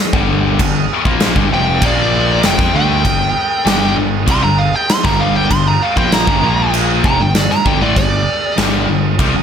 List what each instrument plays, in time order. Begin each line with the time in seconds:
0.13 picked electric bass G1, distorted electric guitar G2 D3 G3, kick
0.59 picked electric bass G1, distorted electric guitar G2 D3, kick, crash
1.05 picked electric bass A#1, distorted electric guitar A#2 F3 A#3, kick
1.20 snare, crash
1.36 picked electric bass G1, distorted electric guitar G2 D3, kick
1.51 picked electric bass F1, distorted electric guitar F2 C3 F3, lead electric guitar G5
1.82 picked electric bass A#1, distorted electric guitar A#2 F3 A#3, kick, crash
1.86 lead electric guitar D5
2.43 picked electric bass F1, distorted electric guitar F2 C3, lead electric guitar G5, snare, crash
2.58 picked electric bass F2, distorted electric guitar F3 C4, kick, snare
2.74 picked electric bass D2, distorted electric guitar D3 A3 D4, lead electric guitar G5
3.05 picked electric bass G1, distorted electric guitar G2 D3, kick, crash
3.65 picked electric bass G1, distorted electric guitar G2 D3 G3, snare, crash
3.97 picked electric bass G1, distorted electric guitar G2 D3
4.26 picked electric bass C2, distorted electric guitar C3 G3, kick, crash
4.31 lead electric guitar C6
4.42 picked electric bass G1, distorted electric guitar G2 D3, lead electric guitar A#5
4.58 lead electric guitar F5
4.75 lead electric guitar G5
4.89 lead electric guitar C6, snare, crash
5.04 picked electric bass G1, distorted electric guitar G2 D3 G3, lead electric guitar A#5, kick, snare
5.20 lead electric guitar F5
5.36 lead electric guitar G5
5.50 picked electric bass G1, distorted electric guitar G2 D3, lead electric guitar C6, kick, crash
5.68 lead electric guitar A#5
5.82 lead electric guitar F5
5.96 picked electric bass A#1, distorted electric guitar A#2 F3 A#3, lead electric guitar G5, kick
6.12 lead electric guitar A#5, snare, crash
6.27 picked electric bass G1, distorted electric guitar G2 D3, kick
6.42 picked electric bass A#1, distorted electric guitar A#2 F3 A#3
6.74 crash
7.03 picked electric bass F1, distorted electric guitar F2 C3, lead electric guitar A#5, kick
7.19 picked electric bass G1, distorted electric guitar G2 D3, lead electric guitar G5
7.35 lead electric guitar D5, snare, crash
7.51 lead electric guitar A#5, muted picked electric bass stroke, muted distorted electric guitar stroke, snare
7.65 picked electric bass G1, distorted electric guitar G2 D3, lead electric guitar G5, kick
7.82 picked electric bass A1, distorted electric guitar A2 E3, lead electric guitar D5
7.96 picked electric bass G1, distorted electric guitar G2 D3, lead electric guitar D5, kick, crash
8.58 picked electric bass G1, distorted electric guitar G2 D3 G3, snare, crash
8.89 picked electric bass G1, distorted electric guitar G2 D3
9.19 picked electric bass C2, distorted electric guitar C3 G3, kick, crash
9.35 picked electric bass G1, distorted electric guitar G2 D3